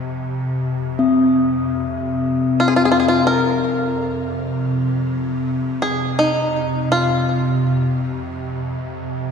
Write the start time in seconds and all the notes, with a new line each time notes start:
Already playing: F2 C3 A#3
0.99 C4
2.60 F4
2.68 G#4
2.76 F4
2.85 G#4
2.92 F4
3.00 G#4
3.08 F4
3.27 A#4
3.98 F2 C3
5.82 G#4
6.19 D#4
6.92 F4